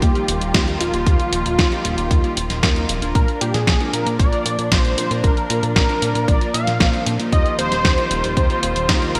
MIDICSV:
0, 0, Header, 1, 6, 480
1, 0, Start_track
1, 0, Key_signature, -3, "major"
1, 0, Tempo, 521739
1, 980, Time_signature, 4, 2, 24, 8
1, 8462, End_track
2, 0, Start_track
2, 0, Title_t, "Analog synth lead"
2, 0, Program_c, 0, 81
2, 20, Note_on_c, 0, 67, 105
2, 703, Note_off_c, 0, 67, 0
2, 741, Note_on_c, 0, 65, 98
2, 2623, Note_off_c, 0, 65, 0
2, 2900, Note_on_c, 0, 70, 93
2, 3123, Note_off_c, 0, 70, 0
2, 3138, Note_on_c, 0, 67, 82
2, 3250, Note_off_c, 0, 67, 0
2, 3258, Note_on_c, 0, 68, 86
2, 3593, Note_off_c, 0, 68, 0
2, 3617, Note_on_c, 0, 70, 92
2, 3841, Note_off_c, 0, 70, 0
2, 3856, Note_on_c, 0, 74, 101
2, 4337, Note_on_c, 0, 72, 97
2, 4351, Note_off_c, 0, 74, 0
2, 4817, Note_on_c, 0, 70, 106
2, 4831, Note_off_c, 0, 72, 0
2, 5291, Note_off_c, 0, 70, 0
2, 5297, Note_on_c, 0, 70, 101
2, 5777, Note_on_c, 0, 74, 107
2, 5791, Note_off_c, 0, 70, 0
2, 6012, Note_off_c, 0, 74, 0
2, 6017, Note_on_c, 0, 77, 108
2, 6465, Note_off_c, 0, 77, 0
2, 6739, Note_on_c, 0, 75, 113
2, 6963, Note_off_c, 0, 75, 0
2, 6979, Note_on_c, 0, 72, 117
2, 7662, Note_off_c, 0, 72, 0
2, 7699, Note_on_c, 0, 72, 112
2, 8382, Note_off_c, 0, 72, 0
2, 8418, Note_on_c, 0, 70, 99
2, 8462, Note_off_c, 0, 70, 0
2, 8462, End_track
3, 0, Start_track
3, 0, Title_t, "Analog polysynth"
3, 0, Program_c, 1, 90
3, 0, Note_on_c, 1, 58, 96
3, 0, Note_on_c, 1, 63, 90
3, 0, Note_on_c, 1, 65, 88
3, 0, Note_on_c, 1, 67, 109
3, 111, Note_off_c, 1, 58, 0
3, 111, Note_off_c, 1, 63, 0
3, 111, Note_off_c, 1, 65, 0
3, 111, Note_off_c, 1, 67, 0
3, 141, Note_on_c, 1, 58, 88
3, 141, Note_on_c, 1, 63, 82
3, 141, Note_on_c, 1, 65, 80
3, 141, Note_on_c, 1, 67, 94
3, 264, Note_off_c, 1, 58, 0
3, 264, Note_off_c, 1, 63, 0
3, 264, Note_off_c, 1, 65, 0
3, 264, Note_off_c, 1, 67, 0
3, 500, Note_on_c, 1, 58, 101
3, 500, Note_on_c, 1, 63, 93
3, 500, Note_on_c, 1, 65, 88
3, 500, Note_on_c, 1, 70, 106
3, 831, Note_off_c, 1, 58, 0
3, 831, Note_off_c, 1, 63, 0
3, 831, Note_off_c, 1, 65, 0
3, 831, Note_off_c, 1, 70, 0
3, 859, Note_on_c, 1, 65, 82
3, 860, Note_on_c, 1, 58, 91
3, 860, Note_on_c, 1, 63, 82
3, 860, Note_on_c, 1, 67, 101
3, 1191, Note_off_c, 1, 58, 0
3, 1191, Note_off_c, 1, 63, 0
3, 1191, Note_off_c, 1, 65, 0
3, 1191, Note_off_c, 1, 67, 0
3, 1219, Note_on_c, 1, 58, 80
3, 1219, Note_on_c, 1, 63, 77
3, 1219, Note_on_c, 1, 65, 74
3, 1219, Note_on_c, 1, 67, 90
3, 1343, Note_off_c, 1, 58, 0
3, 1343, Note_off_c, 1, 63, 0
3, 1343, Note_off_c, 1, 65, 0
3, 1343, Note_off_c, 1, 67, 0
3, 1579, Note_on_c, 1, 63, 86
3, 1579, Note_on_c, 1, 65, 91
3, 1580, Note_on_c, 1, 58, 97
3, 1580, Note_on_c, 1, 67, 107
3, 2031, Note_off_c, 1, 58, 0
3, 2031, Note_off_c, 1, 63, 0
3, 2031, Note_off_c, 1, 65, 0
3, 2031, Note_off_c, 1, 67, 0
3, 2059, Note_on_c, 1, 65, 80
3, 2060, Note_on_c, 1, 58, 88
3, 2060, Note_on_c, 1, 63, 78
3, 2060, Note_on_c, 1, 67, 96
3, 2183, Note_off_c, 1, 58, 0
3, 2183, Note_off_c, 1, 63, 0
3, 2183, Note_off_c, 1, 65, 0
3, 2183, Note_off_c, 1, 67, 0
3, 2419, Note_on_c, 1, 58, 100
3, 2419, Note_on_c, 1, 63, 91
3, 2419, Note_on_c, 1, 65, 91
3, 2419, Note_on_c, 1, 70, 110
3, 2750, Note_off_c, 1, 58, 0
3, 2750, Note_off_c, 1, 63, 0
3, 2750, Note_off_c, 1, 65, 0
3, 2750, Note_off_c, 1, 70, 0
3, 2779, Note_on_c, 1, 58, 91
3, 2779, Note_on_c, 1, 62, 84
3, 2779, Note_on_c, 1, 65, 83
3, 2779, Note_on_c, 1, 70, 100
3, 3110, Note_off_c, 1, 58, 0
3, 3110, Note_off_c, 1, 62, 0
3, 3110, Note_off_c, 1, 65, 0
3, 3110, Note_off_c, 1, 70, 0
3, 3140, Note_on_c, 1, 58, 84
3, 3140, Note_on_c, 1, 62, 76
3, 3140, Note_on_c, 1, 65, 75
3, 3140, Note_on_c, 1, 70, 91
3, 3263, Note_off_c, 1, 58, 0
3, 3263, Note_off_c, 1, 62, 0
3, 3263, Note_off_c, 1, 65, 0
3, 3263, Note_off_c, 1, 70, 0
3, 3499, Note_on_c, 1, 58, 97
3, 3499, Note_on_c, 1, 62, 89
3, 3499, Note_on_c, 1, 65, 88
3, 3499, Note_on_c, 1, 70, 105
3, 3950, Note_off_c, 1, 58, 0
3, 3950, Note_off_c, 1, 62, 0
3, 3951, Note_off_c, 1, 65, 0
3, 3951, Note_off_c, 1, 70, 0
3, 3979, Note_on_c, 1, 58, 89
3, 3979, Note_on_c, 1, 62, 81
3, 3979, Note_on_c, 1, 65, 80
3, 3979, Note_on_c, 1, 70, 97
3, 4103, Note_off_c, 1, 58, 0
3, 4103, Note_off_c, 1, 62, 0
3, 4103, Note_off_c, 1, 65, 0
3, 4103, Note_off_c, 1, 70, 0
3, 4339, Note_on_c, 1, 58, 100
3, 4339, Note_on_c, 1, 62, 90
3, 4339, Note_on_c, 1, 65, 92
3, 4339, Note_on_c, 1, 72, 112
3, 4670, Note_off_c, 1, 58, 0
3, 4670, Note_off_c, 1, 65, 0
3, 4670, Note_off_c, 1, 72, 0
3, 4671, Note_off_c, 1, 62, 0
3, 4699, Note_on_c, 1, 58, 90
3, 4699, Note_on_c, 1, 62, 83
3, 4699, Note_on_c, 1, 65, 83
3, 4699, Note_on_c, 1, 70, 101
3, 5030, Note_off_c, 1, 62, 0
3, 5030, Note_off_c, 1, 65, 0
3, 5030, Note_off_c, 1, 70, 0
3, 5031, Note_off_c, 1, 58, 0
3, 5059, Note_on_c, 1, 58, 84
3, 5059, Note_on_c, 1, 62, 74
3, 5059, Note_on_c, 1, 70, 91
3, 5060, Note_on_c, 1, 65, 74
3, 5183, Note_off_c, 1, 58, 0
3, 5183, Note_off_c, 1, 62, 0
3, 5183, Note_off_c, 1, 65, 0
3, 5183, Note_off_c, 1, 70, 0
3, 5419, Note_on_c, 1, 62, 88
3, 5419, Note_on_c, 1, 65, 91
3, 5420, Note_on_c, 1, 58, 95
3, 5420, Note_on_c, 1, 70, 105
3, 5871, Note_off_c, 1, 58, 0
3, 5871, Note_off_c, 1, 62, 0
3, 5871, Note_off_c, 1, 65, 0
3, 5871, Note_off_c, 1, 70, 0
3, 5899, Note_on_c, 1, 58, 89
3, 5899, Note_on_c, 1, 62, 80
3, 5899, Note_on_c, 1, 65, 82
3, 5899, Note_on_c, 1, 70, 98
3, 6023, Note_off_c, 1, 58, 0
3, 6023, Note_off_c, 1, 62, 0
3, 6023, Note_off_c, 1, 65, 0
3, 6023, Note_off_c, 1, 70, 0
3, 6259, Note_on_c, 1, 58, 99
3, 6259, Note_on_c, 1, 62, 88
3, 6259, Note_on_c, 1, 65, 92
3, 6259, Note_on_c, 1, 72, 106
3, 6590, Note_off_c, 1, 58, 0
3, 6590, Note_off_c, 1, 62, 0
3, 6590, Note_off_c, 1, 65, 0
3, 6590, Note_off_c, 1, 72, 0
3, 6619, Note_on_c, 1, 58, 90
3, 6619, Note_on_c, 1, 63, 83
3, 6619, Note_on_c, 1, 65, 84
3, 6619, Note_on_c, 1, 67, 101
3, 6950, Note_off_c, 1, 58, 0
3, 6950, Note_off_c, 1, 63, 0
3, 6950, Note_off_c, 1, 65, 0
3, 6950, Note_off_c, 1, 67, 0
3, 6978, Note_on_c, 1, 67, 91
3, 6979, Note_on_c, 1, 58, 81
3, 6979, Note_on_c, 1, 63, 74
3, 6979, Note_on_c, 1, 65, 75
3, 7103, Note_off_c, 1, 58, 0
3, 7103, Note_off_c, 1, 63, 0
3, 7103, Note_off_c, 1, 65, 0
3, 7103, Note_off_c, 1, 67, 0
3, 7339, Note_on_c, 1, 58, 97
3, 7339, Note_on_c, 1, 63, 85
3, 7339, Note_on_c, 1, 65, 89
3, 7339, Note_on_c, 1, 67, 105
3, 7790, Note_off_c, 1, 58, 0
3, 7790, Note_off_c, 1, 63, 0
3, 7790, Note_off_c, 1, 65, 0
3, 7790, Note_off_c, 1, 67, 0
3, 7819, Note_on_c, 1, 58, 86
3, 7819, Note_on_c, 1, 63, 81
3, 7819, Note_on_c, 1, 65, 81
3, 7819, Note_on_c, 1, 67, 93
3, 7943, Note_off_c, 1, 58, 0
3, 7943, Note_off_c, 1, 63, 0
3, 7943, Note_off_c, 1, 65, 0
3, 7943, Note_off_c, 1, 67, 0
3, 8178, Note_on_c, 1, 58, 100
3, 8178, Note_on_c, 1, 63, 93
3, 8178, Note_on_c, 1, 65, 89
3, 8178, Note_on_c, 1, 70, 110
3, 8462, Note_off_c, 1, 58, 0
3, 8462, Note_off_c, 1, 63, 0
3, 8462, Note_off_c, 1, 65, 0
3, 8462, Note_off_c, 1, 70, 0
3, 8462, End_track
4, 0, Start_track
4, 0, Title_t, "String section"
4, 0, Program_c, 2, 48
4, 0, Note_on_c, 2, 51, 76
4, 0, Note_on_c, 2, 53, 71
4, 0, Note_on_c, 2, 55, 71
4, 0, Note_on_c, 2, 58, 71
4, 0, Note_on_c, 2, 65, 83
4, 2862, Note_off_c, 2, 58, 0
4, 2863, Note_off_c, 2, 51, 0
4, 2863, Note_off_c, 2, 53, 0
4, 2863, Note_off_c, 2, 55, 0
4, 2863, Note_off_c, 2, 65, 0
4, 2899, Note_on_c, 2, 53, 78
4, 2900, Note_on_c, 2, 58, 71
4, 2900, Note_on_c, 2, 62, 87
4, 6703, Note_off_c, 2, 62, 0
4, 6738, Note_on_c, 2, 65, 86
4, 6739, Note_on_c, 2, 51, 77
4, 6739, Note_on_c, 2, 55, 71
4, 8462, Note_off_c, 2, 51, 0
4, 8462, Note_off_c, 2, 53, 0
4, 8462, Note_off_c, 2, 55, 0
4, 8462, Note_off_c, 2, 58, 0
4, 8462, Note_off_c, 2, 65, 0
4, 8462, End_track
5, 0, Start_track
5, 0, Title_t, "Analog synth bass"
5, 0, Program_c, 3, 38
5, 19, Note_on_c, 3, 39, 88
5, 125, Note_off_c, 3, 39, 0
5, 260, Note_on_c, 3, 27, 98
5, 365, Note_off_c, 3, 27, 0
5, 380, Note_on_c, 3, 27, 84
5, 485, Note_off_c, 3, 27, 0
5, 499, Note_on_c, 3, 39, 88
5, 710, Note_off_c, 3, 39, 0
5, 739, Note_on_c, 3, 27, 90
5, 845, Note_off_c, 3, 27, 0
5, 860, Note_on_c, 3, 27, 84
5, 965, Note_off_c, 3, 27, 0
5, 979, Note_on_c, 3, 39, 96
5, 1085, Note_off_c, 3, 39, 0
5, 1220, Note_on_c, 3, 27, 81
5, 1325, Note_off_c, 3, 27, 0
5, 1339, Note_on_c, 3, 27, 97
5, 1444, Note_off_c, 3, 27, 0
5, 1458, Note_on_c, 3, 39, 101
5, 1564, Note_off_c, 3, 39, 0
5, 1699, Note_on_c, 3, 27, 83
5, 1804, Note_off_c, 3, 27, 0
5, 1820, Note_on_c, 3, 27, 75
5, 1925, Note_off_c, 3, 27, 0
5, 1939, Note_on_c, 3, 39, 86
5, 2044, Note_off_c, 3, 39, 0
5, 2180, Note_on_c, 3, 27, 95
5, 2285, Note_off_c, 3, 27, 0
5, 2301, Note_on_c, 3, 27, 81
5, 2405, Note_off_c, 3, 27, 0
5, 2419, Note_on_c, 3, 39, 89
5, 2630, Note_off_c, 3, 39, 0
5, 2660, Note_on_c, 3, 27, 88
5, 2765, Note_off_c, 3, 27, 0
5, 2779, Note_on_c, 3, 27, 86
5, 2884, Note_off_c, 3, 27, 0
5, 2898, Note_on_c, 3, 34, 99
5, 3004, Note_off_c, 3, 34, 0
5, 3140, Note_on_c, 3, 46, 80
5, 3245, Note_off_c, 3, 46, 0
5, 3259, Note_on_c, 3, 46, 96
5, 3364, Note_off_c, 3, 46, 0
5, 3379, Note_on_c, 3, 34, 99
5, 3485, Note_off_c, 3, 34, 0
5, 3618, Note_on_c, 3, 46, 81
5, 3724, Note_off_c, 3, 46, 0
5, 3739, Note_on_c, 3, 46, 76
5, 3844, Note_off_c, 3, 46, 0
5, 3859, Note_on_c, 3, 34, 87
5, 3965, Note_off_c, 3, 34, 0
5, 4099, Note_on_c, 3, 46, 95
5, 4204, Note_off_c, 3, 46, 0
5, 4219, Note_on_c, 3, 46, 82
5, 4324, Note_off_c, 3, 46, 0
5, 4339, Note_on_c, 3, 34, 91
5, 4550, Note_off_c, 3, 34, 0
5, 4580, Note_on_c, 3, 46, 90
5, 4685, Note_off_c, 3, 46, 0
5, 4700, Note_on_c, 3, 46, 87
5, 4805, Note_off_c, 3, 46, 0
5, 4819, Note_on_c, 3, 34, 100
5, 4924, Note_off_c, 3, 34, 0
5, 5060, Note_on_c, 3, 46, 79
5, 5165, Note_off_c, 3, 46, 0
5, 5180, Note_on_c, 3, 46, 100
5, 5285, Note_off_c, 3, 46, 0
5, 5299, Note_on_c, 3, 34, 101
5, 5404, Note_off_c, 3, 34, 0
5, 5539, Note_on_c, 3, 46, 81
5, 5645, Note_off_c, 3, 46, 0
5, 5659, Note_on_c, 3, 46, 74
5, 5765, Note_off_c, 3, 46, 0
5, 5779, Note_on_c, 3, 34, 89
5, 5884, Note_off_c, 3, 34, 0
5, 6019, Note_on_c, 3, 46, 94
5, 6125, Note_off_c, 3, 46, 0
5, 6139, Note_on_c, 3, 46, 82
5, 6245, Note_off_c, 3, 46, 0
5, 6259, Note_on_c, 3, 34, 92
5, 6364, Note_off_c, 3, 34, 0
5, 6500, Note_on_c, 3, 46, 98
5, 6605, Note_off_c, 3, 46, 0
5, 6619, Note_on_c, 3, 46, 96
5, 6724, Note_off_c, 3, 46, 0
5, 6738, Note_on_c, 3, 39, 98
5, 6844, Note_off_c, 3, 39, 0
5, 6979, Note_on_c, 3, 27, 81
5, 7084, Note_off_c, 3, 27, 0
5, 7099, Note_on_c, 3, 27, 97
5, 7204, Note_off_c, 3, 27, 0
5, 7218, Note_on_c, 3, 39, 98
5, 7324, Note_off_c, 3, 39, 0
5, 7459, Note_on_c, 3, 27, 82
5, 7564, Note_off_c, 3, 27, 0
5, 7578, Note_on_c, 3, 27, 75
5, 7684, Note_off_c, 3, 27, 0
5, 7699, Note_on_c, 3, 39, 85
5, 7804, Note_off_c, 3, 39, 0
5, 7938, Note_on_c, 3, 27, 96
5, 8044, Note_off_c, 3, 27, 0
5, 8058, Note_on_c, 3, 27, 82
5, 8164, Note_off_c, 3, 27, 0
5, 8178, Note_on_c, 3, 39, 89
5, 8389, Note_off_c, 3, 39, 0
5, 8419, Note_on_c, 3, 27, 87
5, 8462, Note_off_c, 3, 27, 0
5, 8462, End_track
6, 0, Start_track
6, 0, Title_t, "Drums"
6, 19, Note_on_c, 9, 36, 112
6, 21, Note_on_c, 9, 42, 50
6, 111, Note_off_c, 9, 36, 0
6, 113, Note_off_c, 9, 42, 0
6, 141, Note_on_c, 9, 42, 26
6, 233, Note_off_c, 9, 42, 0
6, 261, Note_on_c, 9, 42, 92
6, 353, Note_off_c, 9, 42, 0
6, 381, Note_on_c, 9, 42, 52
6, 473, Note_off_c, 9, 42, 0
6, 499, Note_on_c, 9, 36, 115
6, 501, Note_on_c, 9, 38, 115
6, 501, Note_on_c, 9, 42, 55
6, 591, Note_off_c, 9, 36, 0
6, 593, Note_off_c, 9, 38, 0
6, 593, Note_off_c, 9, 42, 0
6, 622, Note_on_c, 9, 42, 26
6, 714, Note_off_c, 9, 42, 0
6, 741, Note_on_c, 9, 42, 88
6, 833, Note_off_c, 9, 42, 0
6, 861, Note_on_c, 9, 42, 50
6, 953, Note_off_c, 9, 42, 0
6, 979, Note_on_c, 9, 36, 119
6, 980, Note_on_c, 9, 42, 52
6, 1071, Note_off_c, 9, 36, 0
6, 1072, Note_off_c, 9, 42, 0
6, 1100, Note_on_c, 9, 42, 27
6, 1192, Note_off_c, 9, 42, 0
6, 1220, Note_on_c, 9, 42, 95
6, 1312, Note_off_c, 9, 42, 0
6, 1341, Note_on_c, 9, 42, 55
6, 1433, Note_off_c, 9, 42, 0
6, 1459, Note_on_c, 9, 36, 116
6, 1461, Note_on_c, 9, 38, 120
6, 1461, Note_on_c, 9, 42, 52
6, 1551, Note_off_c, 9, 36, 0
6, 1553, Note_off_c, 9, 38, 0
6, 1553, Note_off_c, 9, 42, 0
6, 1581, Note_on_c, 9, 42, 25
6, 1673, Note_off_c, 9, 42, 0
6, 1701, Note_on_c, 9, 42, 90
6, 1793, Note_off_c, 9, 42, 0
6, 1820, Note_on_c, 9, 42, 54
6, 1912, Note_off_c, 9, 42, 0
6, 1939, Note_on_c, 9, 36, 116
6, 1940, Note_on_c, 9, 42, 54
6, 2031, Note_off_c, 9, 36, 0
6, 2032, Note_off_c, 9, 42, 0
6, 2061, Note_on_c, 9, 42, 27
6, 2153, Note_off_c, 9, 42, 0
6, 2180, Note_on_c, 9, 42, 95
6, 2272, Note_off_c, 9, 42, 0
6, 2300, Note_on_c, 9, 38, 36
6, 2300, Note_on_c, 9, 42, 53
6, 2392, Note_off_c, 9, 38, 0
6, 2392, Note_off_c, 9, 42, 0
6, 2419, Note_on_c, 9, 36, 120
6, 2420, Note_on_c, 9, 38, 120
6, 2420, Note_on_c, 9, 42, 53
6, 2511, Note_off_c, 9, 36, 0
6, 2512, Note_off_c, 9, 38, 0
6, 2512, Note_off_c, 9, 42, 0
6, 2540, Note_on_c, 9, 42, 26
6, 2632, Note_off_c, 9, 42, 0
6, 2660, Note_on_c, 9, 42, 90
6, 2752, Note_off_c, 9, 42, 0
6, 2780, Note_on_c, 9, 42, 51
6, 2872, Note_off_c, 9, 42, 0
6, 2899, Note_on_c, 9, 36, 122
6, 2900, Note_on_c, 9, 42, 50
6, 2991, Note_off_c, 9, 36, 0
6, 2992, Note_off_c, 9, 42, 0
6, 3020, Note_on_c, 9, 42, 26
6, 3112, Note_off_c, 9, 42, 0
6, 3140, Note_on_c, 9, 42, 96
6, 3232, Note_off_c, 9, 42, 0
6, 3260, Note_on_c, 9, 38, 36
6, 3260, Note_on_c, 9, 42, 53
6, 3352, Note_off_c, 9, 38, 0
6, 3352, Note_off_c, 9, 42, 0
6, 3379, Note_on_c, 9, 36, 119
6, 3380, Note_on_c, 9, 38, 119
6, 3380, Note_on_c, 9, 42, 53
6, 3471, Note_off_c, 9, 36, 0
6, 3472, Note_off_c, 9, 38, 0
6, 3472, Note_off_c, 9, 42, 0
6, 3500, Note_on_c, 9, 42, 25
6, 3592, Note_off_c, 9, 42, 0
6, 3620, Note_on_c, 9, 42, 89
6, 3712, Note_off_c, 9, 42, 0
6, 3740, Note_on_c, 9, 42, 53
6, 3832, Note_off_c, 9, 42, 0
6, 3859, Note_on_c, 9, 36, 122
6, 3860, Note_on_c, 9, 42, 53
6, 3951, Note_off_c, 9, 36, 0
6, 3952, Note_off_c, 9, 42, 0
6, 3979, Note_on_c, 9, 42, 26
6, 4071, Note_off_c, 9, 42, 0
6, 4100, Note_on_c, 9, 42, 91
6, 4192, Note_off_c, 9, 42, 0
6, 4220, Note_on_c, 9, 42, 51
6, 4312, Note_off_c, 9, 42, 0
6, 4339, Note_on_c, 9, 36, 122
6, 4340, Note_on_c, 9, 38, 124
6, 4340, Note_on_c, 9, 42, 53
6, 4431, Note_off_c, 9, 36, 0
6, 4432, Note_off_c, 9, 38, 0
6, 4432, Note_off_c, 9, 42, 0
6, 4459, Note_on_c, 9, 42, 26
6, 4551, Note_off_c, 9, 42, 0
6, 4580, Note_on_c, 9, 42, 90
6, 4672, Note_off_c, 9, 42, 0
6, 4701, Note_on_c, 9, 42, 50
6, 4793, Note_off_c, 9, 42, 0
6, 4819, Note_on_c, 9, 36, 119
6, 4821, Note_on_c, 9, 42, 49
6, 4911, Note_off_c, 9, 36, 0
6, 4913, Note_off_c, 9, 42, 0
6, 4941, Note_on_c, 9, 42, 25
6, 5033, Note_off_c, 9, 42, 0
6, 5060, Note_on_c, 9, 42, 90
6, 5152, Note_off_c, 9, 42, 0
6, 5180, Note_on_c, 9, 42, 50
6, 5272, Note_off_c, 9, 42, 0
6, 5299, Note_on_c, 9, 36, 117
6, 5300, Note_on_c, 9, 38, 117
6, 5300, Note_on_c, 9, 42, 49
6, 5391, Note_off_c, 9, 36, 0
6, 5392, Note_off_c, 9, 38, 0
6, 5392, Note_off_c, 9, 42, 0
6, 5420, Note_on_c, 9, 42, 25
6, 5512, Note_off_c, 9, 42, 0
6, 5540, Note_on_c, 9, 42, 86
6, 5632, Note_off_c, 9, 42, 0
6, 5661, Note_on_c, 9, 42, 50
6, 5753, Note_off_c, 9, 42, 0
6, 5779, Note_on_c, 9, 36, 115
6, 5781, Note_on_c, 9, 42, 49
6, 5871, Note_off_c, 9, 36, 0
6, 5873, Note_off_c, 9, 42, 0
6, 5900, Note_on_c, 9, 42, 25
6, 5992, Note_off_c, 9, 42, 0
6, 6021, Note_on_c, 9, 42, 90
6, 6113, Note_off_c, 9, 42, 0
6, 6140, Note_on_c, 9, 38, 36
6, 6140, Note_on_c, 9, 42, 51
6, 6232, Note_off_c, 9, 38, 0
6, 6232, Note_off_c, 9, 42, 0
6, 6259, Note_on_c, 9, 36, 122
6, 6261, Note_on_c, 9, 38, 120
6, 6261, Note_on_c, 9, 42, 51
6, 6351, Note_off_c, 9, 36, 0
6, 6353, Note_off_c, 9, 38, 0
6, 6353, Note_off_c, 9, 42, 0
6, 6380, Note_on_c, 9, 42, 25
6, 6472, Note_off_c, 9, 42, 0
6, 6500, Note_on_c, 9, 42, 85
6, 6592, Note_off_c, 9, 42, 0
6, 6620, Note_on_c, 9, 42, 48
6, 6712, Note_off_c, 9, 42, 0
6, 6738, Note_on_c, 9, 36, 118
6, 6740, Note_on_c, 9, 42, 47
6, 6830, Note_off_c, 9, 36, 0
6, 6832, Note_off_c, 9, 42, 0
6, 6860, Note_on_c, 9, 42, 24
6, 6952, Note_off_c, 9, 42, 0
6, 6980, Note_on_c, 9, 42, 86
6, 7072, Note_off_c, 9, 42, 0
6, 7100, Note_on_c, 9, 38, 35
6, 7100, Note_on_c, 9, 42, 49
6, 7192, Note_off_c, 9, 38, 0
6, 7192, Note_off_c, 9, 42, 0
6, 7218, Note_on_c, 9, 36, 116
6, 7220, Note_on_c, 9, 38, 113
6, 7220, Note_on_c, 9, 42, 49
6, 7310, Note_off_c, 9, 36, 0
6, 7312, Note_off_c, 9, 38, 0
6, 7312, Note_off_c, 9, 42, 0
6, 7340, Note_on_c, 9, 42, 24
6, 7432, Note_off_c, 9, 42, 0
6, 7459, Note_on_c, 9, 42, 82
6, 7551, Note_off_c, 9, 42, 0
6, 7580, Note_on_c, 9, 42, 47
6, 7672, Note_off_c, 9, 42, 0
6, 7698, Note_on_c, 9, 36, 111
6, 7700, Note_on_c, 9, 42, 49
6, 7790, Note_off_c, 9, 36, 0
6, 7792, Note_off_c, 9, 42, 0
6, 7820, Note_on_c, 9, 42, 24
6, 7912, Note_off_c, 9, 42, 0
6, 7939, Note_on_c, 9, 42, 83
6, 8031, Note_off_c, 9, 42, 0
6, 8059, Note_on_c, 9, 42, 49
6, 8151, Note_off_c, 9, 42, 0
6, 8178, Note_on_c, 9, 36, 117
6, 8179, Note_on_c, 9, 38, 117
6, 8179, Note_on_c, 9, 42, 50
6, 8270, Note_off_c, 9, 36, 0
6, 8271, Note_off_c, 9, 38, 0
6, 8271, Note_off_c, 9, 42, 0
6, 8299, Note_on_c, 9, 42, 24
6, 8391, Note_off_c, 9, 42, 0
6, 8419, Note_on_c, 9, 42, 82
6, 8462, Note_off_c, 9, 42, 0
6, 8462, End_track
0, 0, End_of_file